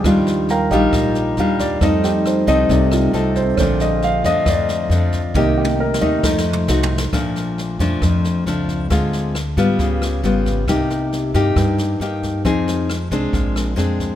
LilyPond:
<<
  \new Staff \with { instrumentName = "Grand piano" } { \time 4/4 \key bes \major \tempo 4 = 135 r4 <bes' f'' g'' bes''>8 <ees' g' bes' ees''>4 r8 f''8 d''8 | ees''8 g'8 c''8 ees''8 d''8 f'8 a'8 c''8 | <des'' d''>8 ees''8 f''8 ees''8 d''4 r4 | ees''8 g'8 bes'8 ees''4 r4. |
r1 | r1 | r1 | r1 | }
  \new Staff \with { instrumentName = "Grand piano" } { \time 4/4 \key bes \major <f g d'>8 r2. r8 | <g a ees'>8 r4. <g a ees'>8 r4. | <d a c'>4. r2 r8 | <ees bes>2 <a ees'>8 r4. |
r1 | r1 | r1 | r1 | }
  \new Staff \with { instrumentName = "Nylon-string guitar" } { \time 4/4 \key bes \major << { <g d' f'>4 r8 <g d' f'>4. <g d' f'>4 | <c' ees' a'>4. <c' ees' a'>4. <c' ees' a'>8 r8 | <f a d'>4. <f a d'>4. <f a d'>8 r8 | <bes ees' g'>4 r8 <a ees'>4. <a ees' ges'>8 r8 |
<f a d'>4. <f a d'>4. <f a d'>4 | <aes c' f'>4 r8 <g ces' f'>4. <g ces' f'>4 | <bes ees' g'>4. <bes ees' g'>4. <bes ees' g'>4 | <c' ees' aes'>4 r8 <aes c' d'>4. <aes c' d'>4 | } \\ { ees2 bes,2 | f2 c2 | bes,2 f,2 | c2 f2 |
bes,2 f,2 | d2 des2 | c2 g,2 | f2 bes,2 | } >> }
  \new Staff \with { instrumentName = "Upright bass" } { \clef bass \time 4/4 \key bes \major ees,4. bes,,8 bes,,4 ees,4 | f,4. c,8 c,4 c,4 | bes,,4. f,8 f,4 f,4 | c,4. ees,8 f,4 c,4 |
bes,,4. f,8 f,4 des,4 | d,4. aes,8 des,4 aes,,4 | c,4. g,8 g,4 g,4 | f,4. c,8 bes,,4 f,4 | }
  \new DrumStaff \with { instrumentName = "Drums" } \drummode { \time 4/4 <bd ss sn>8 sn8 sn8 <bd sn>8 <bd ss sn>8 sn8 sn8 <bd sn>8 | <bd ss sn>8 sn8 <ss sn>8 <bd sn>8 <bd sn>8 <ss sn>8 sn8 <bd sn>8 | <bd ss sn>8 sn8 sn8 <bd sn>8 <bd ss sn>8 sn8 sn8 <bd sn>8 | \tuplet 3/2 { <bd tommh>8 r8 tommh8 r8 sn8 r8 <bd sn>8 sn8 toml8 sn8 tomfh8 sn8 } |
<bd ss sn>8 sn8 sn8 <bd sn>8 <bd ss sn>8 sn8 sn8 <bd sn>8 | <bd ss sn>8 sn8 <ss sn>8 <bd sn>8 <bd sn>8 <ss sn>8 sn8 <bd sn>8 | <bd ss sn>8 sn8 sn8 <bd sn>8 <bd ss sn>8 sn8 sn8 <bd sn>8 | <bd ss sn>8 sn8 <ss sn>8 <bd sn>8 <bd sn>8 <ss sn>8 sn8 <bd sn>8 | }
>>